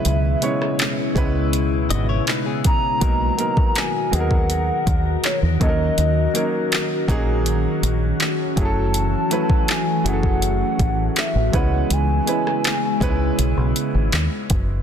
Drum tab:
HH |x-x-x-x-x-x-x-x-|x-x-x-x-x-x-x-x-|x-x-x-x-x-x-x-x-|x-x-x-x-x-x-x-x-|
CP |----x-------x---|----x-------x---|----x-------x---|----x-------x---|
SD |---r------------|----------------|----------------|----------------|
BD |------o-------o-|o--o---o--o---o-|------o-------o-|---o---o--o---o-|

HH |x-x-x-x-x-x-x-x-|
CP |----x-------x---|
SD |---r------------|
BD |------o-------o-|